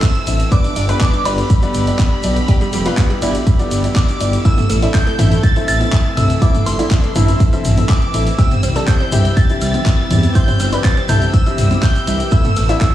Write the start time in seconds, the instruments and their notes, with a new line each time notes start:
Already playing: supersaw synth C3 E3 A3 E4 A4, grand piano C4 E4 A4 E5, synth pluck E4, synth texture E6
0.02 violin section E6, synth bell E6, kick, clap, closed hi-hat, ride, shaker
0.15 closed hi-hat
0.27 detuned saw bass A1, grand piano C4 E4 A4 E5, open hi-hat, ride, shaker
0.40 closed hi-hat, shaker
0.52 supersaw synth B2 D3 G3 D4 G4, grand piano B3 D4 G4 D5, synth pluck B4, violin section D6, synth bell D6, kick, closed hi-hat, ride, shaker
0.64 synth pluck D4, closed hi-hat, shaker
0.76 detuned saw bass G1, synth pluck D4, open hi-hat, ride, shaker
0.89 grand piano B3 D4 G4 B4, synth pluck B4, closed hi-hat, shaker
1.01 synth pluck D4, violin section D6, synth bell D6, kick, clap, closed hi-hat, ride, shaker
1.14 synth pluck D4, closed hi-hat
1.25 detuned saw bass G1, grand piano B3 D4 G4 D5, synth pluck B4, synth bell B5, violin section B5, open hi-hat, ride, shaker
1.38 closed hi-hat, shaker
1.50 kick, closed hi-hat, ride, shaker
1.62 grand piano B3 D4 G4 D5, closed hi-hat, shaker
1.74 detuned saw bass G1, open hi-hat, ride, shaker
1.87 grand piano B3 D4 G4 D5, closed hi-hat, shaker
1.99 kick, clap, closed hi-hat, ride, shaker
2.23 detuned saw bass B1, grand piano B3 D4 G4 D5, open hi-hat, ride, shaker
2.36 closed hi-hat, shaker
2.48 grand piano B3 D4 G4 D5, supersaw synth E4, synth pluck G4, kick, closed hi-hat, ride, shaker
2.61 synth pluck G3, closed hi-hat, shaker
2.73 detuned saw bass F1, synth pluck G3, open hi-hat, ride, shaker
2.85 grand piano B3 D4 G4 B4, synth pluck F4, closed hi-hat, shaker
2.97 synth pluck G3, kick, clap, closed hi-hat, ride, shaker
3.10 synth pluck G3, closed hi-hat
3.22 detuned saw bass G1, grand piano B3 D4 G4 D5, synth pluck E4, open hi-hat, ride, shaker
3.35 closed hi-hat, shaker
3.47 kick, closed hi-hat, ride, shaker
3.59 grand piano B3 D4 G4 D5, closed hi-hat, shaker
3.71 detuned saw bass G1, open hi-hat, ride, shaker
3.84 grand piano B3 D4 G4 D5, closed hi-hat, shaker
3.96 synth bell D6, violin section D6, kick, clap, closed hi-hat, ride, shaker
4.09 closed hi-hat, shaker
4.20 detuned saw bass G1, grand piano B3 D4 G4 D5, open hi-hat, ride, shaker
4.33 closed hi-hat, shaker
4.45 supersaw synth C3 E3 A3 E4 A4, grand piano C4 E4 A4 E5, synth pluck E4, synth texture E6, violin section E6, synth bell E6, kick, closed hi-hat, ride, shaker
4.58 synth pluck A3, closed hi-hat, mid tom, high conga, shaker
4.70 detuned saw bass A1, synth pluck A3, open hi-hat, ride, high woodblock, shaker
4.82 grand piano C4 E4 A4 D5, synth pluck E4, closed hi-hat, shaker
4.94 synth pluck A3, synth bell G6, violin section G6, kick, clap, closed hi-hat, ride, shaker
5.07 synth pluck A3, closed hi-hat
5.19 detuned saw bass A1, grand piano C4 E4 A4 E5, synth pluck E4, mid tom, open hi-hat, ride, high conga, shaker
5.32 closed hi-hat, shaker
5.43 synth bell A6, violin section A6, kick, closed hi-hat, ride, shaker
5.56 grand piano C4 E4 A4 E5, closed hi-hat, shaker
5.68 detuned saw bass A1, violin section A6, synth bell A6, open hi-hat, ride, high woodblock, shaker
5.81 grand piano C4 E4 A4 E5, closed hi-hat, high conga, shaker
5.93 kick, clap, closed hi-hat, shaker
6.17 detuned saw bass C2, grand piano C4 E4 A4 E5, synth bell E6, violin section E6, mid tom, open hi-hat, ride, shaker
6.30 closed hi-hat, shaker
6.42 grand piano C4 E4 A4 E5, synth pluck E4, synth bell D6, violin section D6, kick, closed hi-hat, ride, shaker
6.54 synth pluck A3, closed hi-hat, mid tom, high conga, shaker
6.66 detuned saw bass G1, synth pluck A3, synth bell C6, violin section C6, open hi-hat, ride, high woodblock, shaker
6.79 grand piano C4 E4 A4 D5, synth pluck E4, closed hi-hat, shaker
6.91 synth pluck A3, kick, clap, closed hi-hat, ride, shaker
7.04 synth pluck A3, closed hi-hat
7.16 detuned saw bass A1, grand piano C4 E4 A4 E5, synth pluck E4, mid tom, open hi-hat, ride, high conga, shaker
7.28 closed hi-hat, shaker
7.40 kick, closed hi-hat, ride, shaker
7.53 grand piano C4 E4 A4 E5, closed hi-hat, high woodblock, shaker
7.65 detuned saw bass A1, mid tom, open hi-hat, ride, shaker
7.77 grand piano C4 E4 A4 E5, closed hi-hat, high conga, shaker
7.89 synth bell D6, violin section D6, kick, clap, closed hi-hat, ride, shaker
8.02 closed hi-hat
8.14 detuned saw bass A1, grand piano C4 E4 A4 E5, open hi-hat, ride, shaker
8.27 closed hi-hat, shaker
8.38 supersaw synth C3 G3 G4, grand piano C4 E4 G4 E5, synth pluck G4, synth bell E6, violin section E6, kick, closed hi-hat, ride, shaker
8.51 synth pluck C4, closed hi-hat, mid tom, high conga, shaker
8.63 detuned saw bass C2, synth pluck C4, open hi-hat, ride, high woodblock, shaker
8.76 grand piano C4 E4 G4 D5, synth pluck A4, closed hi-hat, shaker
8.88 synth pluck C4, synth bell G6, violin section G6, kick, clap, closed hi-hat, shaker
9.00 synth pluck C4, closed hi-hat
9.12 detuned saw bass C2, grand piano C4 E4 G4 E5, synth pluck G4, mid tom, open hi-hat, ride, high conga, shaker
9.25 closed hi-hat, shaker
9.37 synth bell A6, violin section A6, kick, closed hi-hat, ride, shaker
9.50 grand piano C4 E4 G4 E5, closed hi-hat, shaker
9.61 detuned saw bass C2, open hi-hat, ride, high woodblock, shaker
9.74 grand piano C4 E4 G4 E5, closed hi-hat, high conga, shaker
9.86 kick, clap, closed hi-hat, ride, shaker
10.11 detuned saw bass E2, grand piano C4 E4 G4 E5, mid tom, open hi-hat, ride, shaker
10.23 closed hi-hat, shaker
10.35 grand piano C4 E4 G4 E5, synth pluck C5, violin section G6, synth bell G6, kick, closed hi-hat, ride, shaker
10.48 synth pluck C4, closed hi-hat, mid tom, high conga, shaker
10.60 detuned saw bass G1, synth pluck C4, open hi-hat, ride, high woodblock, shaker
10.72 grand piano C4 E4 G4 D5, synth pluck B4, closed hi-hat, shaker
10.84 synth pluck C4, synth bell A6, violin section A6, kick, clap, closed hi-hat, ride, shaker
10.97 synth pluck C4, closed hi-hat
11.09 detuned saw bass C2, grand piano C4 E4 G4 E5, synth pluck A4, synth bell G6, violin section G6, mid tom, open hi-hat, ride, high conga, shaker
11.22 closed hi-hat, shaker
11.33 violin section E6, synth bell E6, kick, closed hi-hat, ride, shaker
11.46 grand piano C4 E4 G4 E5, closed hi-hat, high woodblock, shaker
11.58 detuned saw bass C2, mid tom, open hi-hat, ride, shaker
11.71 grand piano C4 E4 G4 E5, closed hi-hat, high conga, shaker
11.83 synth bell G6, violin section G6, kick, clap, closed hi-hat, ride, shaker
11.96 closed hi-hat, shaker
12.07 detuned saw bass C2, grand piano C4 E4 G4 E5, open hi-hat, ride, shaker
12.20 closed hi-hat, shaker
12.31 supersaw synth A3 A4, grand piano C4 E4 A4 E5, synth pluck E4, synth bell E6, violin section E6, kick, closed hi-hat, ride, shaker
12.44 synth pluck A3, closed hi-hat, mid tom, high conga, shaker
12.56 detuned saw bass A1, synth pluck A3, open hi-hat, ride, high woodblock, shaker
12.69 grand piano C4 E4 A4 D5, synth pluck E4, closed hi-hat, shaker
12.81 synth pluck A3, synth bell E6, violin section E6, kick, clap, closed hi-hat, ride, shaker